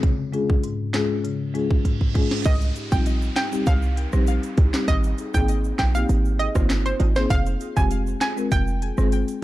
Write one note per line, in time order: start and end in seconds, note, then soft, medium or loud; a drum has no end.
0.03 0.49 C#3 medium
0.03 kick loud
0.03 closed hi-hat medium
0.33 0.46 G#3 medium
0.33 0.46 C#4 medium
0.33 0.46 F4 medium
0.33 0.47 G#4 loud
0.33 closed hi-hat soft
0.50 kick medium
0.64 1.10 G#2 medium
0.64 closed hi-hat medium
0.93 1.07 G#3 medium
0.93 1.07 C#4 medium
0.93 1.07 F4 medium
0.93 1.07 G#4 loud
0.93 snare loud
0.93 clap medium
0.93 closed hi-hat medium
1.24 1.70 C#3 medium
1.24 closed hi-hat medium
1.24 reverse cymbal medium
1.54 1.67 G#3 medium
1.54 1.67 C#4 medium
1.54 1.68 F4 medium
1.54 1.68 G#4 medium
1.54 closed hi-hat medium
1.71 kick medium
1.85 2.31 G#2 medium
1.85 kick medium
1.85 closed hi-hat medium
2.01 kick medium
2.15 2.28 G#3 medium
2.15 2.28 C#4 medium
2.15 2.28 F4 medium
2.15 2.28 G#4 medium
2.15 kick medium
2.15 closed hi-hat soft
2.31 snare medium
2.45 2.71 C2 loud
2.45 2.55 D#5 loud
2.45 kick loud
2.45 closed hi-hat medium
2.45 crash loud
2.45 downlifter medium
2.45 shaker medium
2.61 closed hi-hat medium
2.61 shaker medium
2.75 2.82 D#4 medium
2.75 2.83 G4 medium
2.75 closed hi-hat medium
2.75 shaker medium
2.91 3.30 A#1 medium
2.91 3.03 G3 medium
2.91 3.03 C4 medium
2.91 3.03 D#4 medium
2.91 3.04 F4 medium
2.91 3.01 G5 medium
2.91 kick medium
2.91 shaker medium
3.06 closed hi-hat medium
3.06 shaker medium
3.22 shaker soft
3.36 3.42 D#4 medium
3.36 3.43 G4 medium
3.36 3.46 G5 medium
3.36 snare loud
3.36 clap medium
3.36 closed hi-hat medium
3.36 shaker medium
3.52 3.63 G3 medium
3.52 3.64 C4 medium
3.52 3.64 D#4 medium
3.52 3.64 G4 medium
3.52 shaker medium
3.66 4.07 C2 loud
3.66 4.10 F5 loud
3.66 kick loud
3.66 closed hi-hat medium
3.66 shaker medium
3.82 shaker medium
3.96 4.03 D#4 medium
3.96 4.04 A#4 medium
3.96 closed hi-hat medium
4.12 4.39 A#1 medium
4.12 4.24 G3 medium
4.12 4.24 C4 medium
4.12 4.24 D#4 medium
4.12 4.25 G4 medium
4.12 cross-stick medium
4.12 shaker medium
4.27 closed hi-hat medium
4.27 shaker medium
4.43 closed hi-hat medium
4.43 shaker soft
4.57 4.71 C2 loud
4.57 4.64 D#4 medium
4.57 4.64 G4 loud
4.57 kick loud
4.57 closed hi-hat medium
4.73 4.85 G3 medium
4.73 4.85 C4 medium
4.73 4.85 D#4 medium
4.73 4.85 G4 medium
4.73 snare loud
4.73 clap loud
4.73 shaker medium
4.88 5.14 G#1 loud
4.88 4.98 D#5 loud
4.88 kick loud
4.88 closed hi-hat medium
4.88 shaker medium
5.04 closed hi-hat soft
5.04 shaker medium
5.18 5.24 D#4 medium
5.18 5.25 G#4 medium
5.18 closed hi-hat medium
5.18 shaker medium
5.34 5.73 G#1 medium
5.34 5.45 A#3 medium
5.34 5.46 C4 medium
5.34 5.46 D#4 medium
5.34 5.46 G#4 medium
5.34 5.43 G5 medium
5.34 kick medium
5.34 shaker medium
5.48 closed hi-hat medium
5.48 shaker medium
5.64 shaker soft
5.78 6.05 A#1 medium
5.78 5.85 D#4 medium
5.78 5.86 F4 medium
5.78 5.89 G5 medium
5.78 kick medium
5.78 snare loud
5.78 clap medium
5.78 closed hi-hat medium
5.78 shaker medium
5.94 6.06 A#3 medium
5.94 6.06 C4 medium
5.94 6.06 D#4 medium
5.94 6.07 G4 medium
5.94 6.04 F5 medium
5.94 shaker medium
6.09 6.49 G#1 loud
6.09 closed hi-hat medium
6.09 shaker medium
6.25 shaker medium
6.39 6.46 D#4 medium
6.39 6.46 G#4 medium
6.39 6.49 D#5 medium
6.39 closed hi-hat medium
6.55 6.94 G1 loud
6.55 6.67 A#3 medium
6.55 6.67 C4 medium
6.55 6.67 D#4 medium
6.55 6.67 F4 medium
6.55 kick loud
6.55 cross-stick loud
6.55 high timbale medium
6.55 shaker medium
6.70 snare loud
6.70 clap medium
6.70 closed hi-hat medium
6.70 shaker medium
6.86 6.94 C5 medium
6.86 closed hi-hat medium
6.86 shaker medium
7.00 7.26 G#1 loud
7.00 7.06 D#4 medium
7.00 7.07 F4 medium
7.00 closed hi-hat medium
7.00 high timbale medium
7.16 7.27 A#3 medium
7.16 7.27 C4 medium
7.16 7.28 D#4 medium
7.16 7.28 G#4 medium
7.16 7.25 C5 medium
7.16 snare medium
7.16 shaker medium
7.30 7.56 F1 loud
7.30 7.40 F5 loud
7.30 kick loud
7.30 closed hi-hat medium
7.30 shaker medium
7.46 closed hi-hat medium
7.46 shaker medium
7.60 7.67 F4 medium
7.60 7.67 G#4 medium
7.60 closed hi-hat medium
7.60 shaker medium
7.76 8.15 F1 medium
7.76 7.88 G#3 medium
7.76 7.88 C4 medium
7.76 7.88 F4 medium
7.76 7.88 G4 medium
7.76 7.85 G#5 medium
7.76 kick loud
7.76 shaker medium
7.91 closed hi-hat medium
7.91 shaker medium
8.07 shaker soft
8.21 8.27 F4 medium
8.21 8.28 G#4 medium
8.21 8.31 G#5 medium
8.21 snare loud
8.21 clap medium
8.21 closed hi-hat medium
8.21 shaker medium
8.37 8.48 G#3 medium
8.37 8.49 C4 medium
8.37 8.49 F4 medium
8.37 8.49 A#4 medium
8.37 shaker medium
8.52 8.91 F1 loud
8.52 8.95 G5 loud
8.52 kick loud
8.52 closed hi-hat medium
8.52 shaker medium
8.67 shaker medium
8.81 8.88 F4 medium
8.81 8.89 G#4 medium
8.81 closed hi-hat medium
8.97 9.24 G1 medium
8.97 9.09 G#3 medium
8.97 9.09 C4 medium
8.97 9.09 F4 medium
8.97 9.10 G#4 medium
8.97 cross-stick medium
8.97 shaker medium
9.12 closed hi-hat medium
9.12 shaker medium
9.28 closed hi-hat medium
9.28 shaker medium